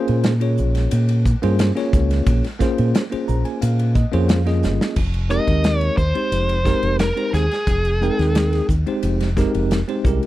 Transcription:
Already playing: A#3 C#4 F4 G#4 C5
0.08 A#2, ride
0.24 snare, hi-hat pedal, ride
0.40 A#3 C#4 F4 G#4 C#5, ride
0.58 A#1, hi-hat pedal
0.75 snare, ride
0.91 A#2, hi-hat pedal, ride
1.08 ride
1.25 kick, hi-hat pedal
1.42 G2 A#3 C#4 F4 G#4 C5, ride
1.59 snare, hi-hat pedal, ride
1.75 A#3 C#4 F4 G#4 C#5, snare, ride
1.93 C#2, kick, hi-hat pedal
2.11 snare, ride
2.26 A#1, kick, hi-hat pedal, ride
2.44 snare, ride
2.59 A#3 C#4 F4 G#4 C5, muted fingered electric bass stroke, kick, snare, hi-hat pedal
2.78 A#2, ride
2.95 snare, hi-hat pedal, ride
3.10 A#3 C#4 F4 G#4 C5, muted fingered electric bass stroke, ride
3.28 A#1 A#5, hi-hat pedal
3.45 G#5, ride
3.62 A#2 F5, hi-hat pedal, ride
3.79 ride
3.95 D#5, kick, hi-hat pedal
4.12 F2 A#3 C#4 F4 G#4 C5 C#5, ride
4.28 F5, snare, hi-hat pedal, ride
4.46 A#3 C#4 F4 G#4 D#5, snare, ride
4.63 G1, snare, hi-hat pedal
4.81 snare
4.96 F1, kick, crash
5.14 ride
5.29 G#3 C4 D#4 G4 A#4 D#5, hi-hat pedal
5.48 D#2, kick, ride
5.64 snare, hi-hat pedal, ride
5.79 C#5, ride
5.97 D#2 C5, kick, hi-hat pedal
6.15 G#3 C4 D#4 G4 C5, ride
6.32 F1, hi-hat pedal, ride
6.49 ride
6.64 G#3 C4 D#4 G4 A#4, kick, snare, hi-hat pedal
6.83 F1, ride
6.99 A#4, snare, hi-hat pedal, ride
7.16 G#3 C4 D#4 G4 C5, ride
7.33 D#2 G#4, snare, hi-hat pedal
7.51 snare, ride
7.67 F1, kick, hi-hat pedal, ride
7.85 ride
8.01 G#3 C4 D#4 A#4 G5, hi-hat pedal
8.19 D#2, snare, ride
8.35 snare, hi-hat pedal, ride
8.53 snare, ride
8.69 D#2, kick, hi-hat pedal
8.86 G#3 C4 D#4 G4 C5, ride
9.03 F1, hi-hat pedal, ride
9.20 snare, ride
9.37 G#3 C4 D#4 G4 A#4, kick, snare, hi-hat pedal
9.54 F1, ride
9.71 snare, hi-hat pedal, ride
9.88 G#3 C4 D#4 G4 C5, ride
10.04 C2 G#3 C#4 E4 G4 A#4, kick, hi-hat pedal
10.23 ride

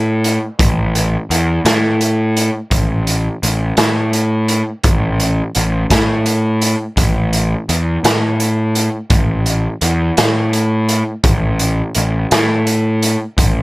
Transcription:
Already playing: A2
0.24 closed hi-hat
0.59 A1, kick, closed hi-hat
0.95 closed hi-hat
1.30 E2, closed hi-hat
1.65 A2, snare, closed hi-hat
2.01 closed hi-hat
2.37 closed hi-hat
2.71 A1, kick, closed hi-hat
3.07 closed hi-hat
3.43 A1, closed hi-hat
3.77 A2, snare, closed hi-hat
4.13 closed hi-hat
4.48 closed hi-hat
4.84 A1, kick, closed hi-hat
5.20 closed hi-hat
5.55 A1, closed hi-hat
5.90 A2, kick, snare, closed hi-hat
6.26 closed hi-hat
6.62 closed hi-hat
6.97 A1, kick, closed hi-hat
7.33 closed hi-hat
7.69 E2, closed hi-hat
8.04 A2, snare, closed hi-hat
8.40 closed hi-hat
8.75 closed hi-hat
9.10 A1, kick, closed hi-hat
9.46 closed hi-hat
9.81 E2, closed hi-hat
10.17 A2, snare, closed hi-hat
10.53 closed hi-hat
10.89 closed hi-hat
11.24 A1, kick, closed hi-hat
11.59 closed hi-hat
11.95 A1, closed hi-hat
12.31 A2, snare, closed hi-hat
12.67 closed hi-hat
13.03 closed hi-hat
13.37 A1, kick, closed hi-hat

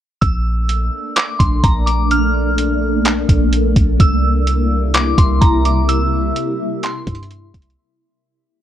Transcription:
0.21 A#1 A3 A#3 D4 E6, kick, closed hi-hat
0.69 closed hi-hat
1.16 D6, clap, closed hi-hat
1.39 A#1 C6, kick, closed hi-hat
1.64 A#1 A#5, kick, closed hi-hat
1.86 D6, closed hi-hat
2.11 F6, closed hi-hat
2.58 closed hi-hat
3.05 clap, closed hi-hat
3.29 A#1, kick, closed hi-hat
3.53 closed hi-hat
3.76 A#1, kick, closed hi-hat
4.00 C2 C3 G3 E4 E6, kick, closed hi-hat
4.47 closed hi-hat
4.94 D6, clap, closed hi-hat
5.18 C2 C6, kick, closed hi-hat
5.41 C2 A#5, kick, closed hi-hat
5.65 D6, closed hi-hat
5.89 E6, closed hi-hat
6.36 closed hi-hat
6.83 C6, clap, closed hi-hat
7.07 G2, kick, closed hi-hat
7.15 closed hi-hat
7.23 closed hi-hat
7.31 closed hi-hat
7.54 C2, kick, closed hi-hat
7.62 closed hi-hat
7.70 closed hi-hat

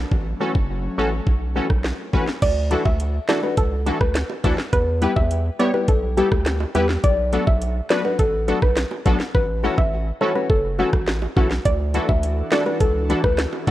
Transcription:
0.11 A1 F#3 A3 C#4, kick
0.40 E3 A3 C#4 F#4 A4
0.55 F#1, kick
0.97 A1 E3 A3 C#4 F#4 A4
1.27 B1, kick
1.55 E3 A3 C#4 F#4 A4
1.70 B1, muted nylon-string guitar stroke, kick, cross-stick
1.84 snare
2.13 A1 E3 A3 C#4 F#4 B4, kick
2.28 snare
2.42 D2 D5, kick, closed hi-hat, crash
2.71 E3 A3 D4 E4 F#4 A4, closed hi-hat
2.85 D2 E5, kick, high bongo
3.00 closed hi-hat
3.28 E3 A3 D4 E4 F#4 A4 D5, snare, closed hi-hat
3.43 E3 A3 D4 F#4 B4, high bongo
3.57 C#2 A4, kick, closed hi-hat
3.86 E3 A3 D4 E4 F#4 A4, closed hi-hat, high bongo
4.00 D2 B4, muted nylon-string guitar stroke, kick, cross-stick
4.15 snare, closed hi-hat, high bongo
4.30 high bongo
4.44 D2 E3 A3 D4 E4 F#4 A4, kick, closed hi-hat, low bongo
4.58 muted nylon-string guitar stroke, snare
4.73 E2 B4, kick, closed hi-hat
5.01 G3 B3 E4 G4 B4, closed hi-hat
5.16 E2 E5, kick, high bongo
5.31 closed hi-hat
5.59 G3 B3 E4 G4 C#5 D5, closed hi-hat
5.73 G3 B3 E4 G4 B4, high bongo
5.88 B1 A4, kick, closed hi-hat
6.17 G3 B3 E4 G4 A4, closed hi-hat, high bongo
6.31 D2, muted nylon-string guitar stroke, kick, cross-stick
6.46 snare, closed hi-hat, high bongo
6.60 high bongo
6.74 E2 G3 B3 E4 G4 B4, closed hi-hat, low bongo
6.89 muted nylon-string guitar stroke, snare
7.04 B1 D5, kick, closed hi-hat
7.32 F#3 A3 B3 D4 F#4 A4, closed hi-hat
7.47 B1 E5, kick, high bongo
7.62 closed hi-hat
7.90 F#3 A3 B3 D4 F#4 B4 D5, snare, closed hi-hat
8.04 F#3 A3 D4 F#4 B4, high bongo
8.19 A1 A4, kick, closed hi-hat
8.47 F#3 A3 B3 D4 F#4 A4, closed hi-hat, high bongo
8.62 B1 B4, muted nylon-string guitar stroke, kick, cross-stick
8.76 snare, closed hi-hat, high bongo
8.91 high bongo
9.05 B1 F#3 A3 B3 D4 F#4 A4, kick, closed hi-hat, low bongo
9.20 muted nylon-string guitar stroke, snare
9.34 A1 B4, kick
9.63 E3 A3 C#4 E4 F#4 A4
9.78 A1 E5, kick, high bongo
10.21 E3 A3 C#4 E4 F#4 A4 C#5, low bongo
10.35 E3 A3 C#4 F#4 B4, high bongo
10.50 F#1 A4, kick
10.78 E3 A3 C#4 E4 F#4 A4, high bongo
10.93 A1, muted nylon-string guitar stroke, kick, cross-stick
11.07 snare, high bongo
11.22 high bongo
11.36 B1 E3 A3 C#4 E4 F#4 A4, kick, low bongo
11.50 muted nylon-string guitar stroke, snare
11.65 D2 E3 D4 E4 F#4 A4 D5, kick, closed hi-hat
11.94 E3 A3 D4 E4 F#4 A4, closed hi-hat
12.09 D2 E5, kick, high bongo
12.23 closed hi-hat
12.51 E3 A3 D4 E4 F#4 A4 D5, snare, closed hi-hat
12.66 E3 A3 D4 F#4 B4, high bongo
12.80 C#2 A4, kick, closed hi-hat
13.09 E3 A3 D4 E4 F#4 A4, closed hi-hat, high bongo
13.24 D2 B4, muted nylon-string guitar stroke, kick, cross-stick
13.38 snare, closed hi-hat, high bongo
13.53 high bongo
13.67 D2 E3 A3 D4 E4 F#4 A4, kick, closed hi-hat, low bongo

